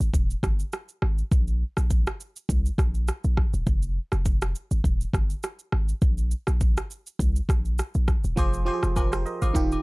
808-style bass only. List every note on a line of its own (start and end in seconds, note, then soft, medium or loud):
0.00 0.10 G#1 medium
0.14 0.35 D#1 loud
0.43 0.64 G1 medium
1.02 1.23 G#1 medium
1.31 1.64 A#1 loud
1.77 2.07 A#1 loud
2.49 2.70 C2 loud
2.78 3.11 A#1 loud
3.24 3.45 A#1 loud
3.54 3.63 D#1 medium
3.67 3.99 F1 loud
4.13 4.54 F1 loud
4.71 4.81 G#1 medium
4.84 5.05 D#1 loud
5.13 5.34 G1 medium
5.73 5.93 G#1 medium
6.02 6.34 A#1 loud
6.48 6.78 A#1 loud
7.19 7.40 C2 loud
7.49 7.81 A#1 medium
7.95 8.16 A#1 loud
8.24 8.34 D#1 medium
8.37 8.70 F1 loud
8.83 9.25 F1 loud
9.42 9.51 G#1 medium
9.55 9.76 D#1 loud